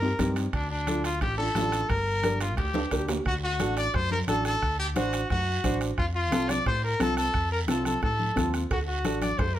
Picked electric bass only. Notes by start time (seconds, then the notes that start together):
Already playing: G2
0.19 G2
0.53 D2
1.21 A1
1.55 A1
1.90 G1
2.58 D2
2.92 D2
3.26 D2
3.60 A1
3.94 F#2
4.28 A1
4.62 D2
4.96 A1
5.30 F#2
5.64 A1
5.98 F2
6.32 C2
6.66 A2
7.00 C2
7.34 F2
7.68 C2
8.03 A2
8.37 D#2
8.71 D2
9.04 A1
9.39 F#2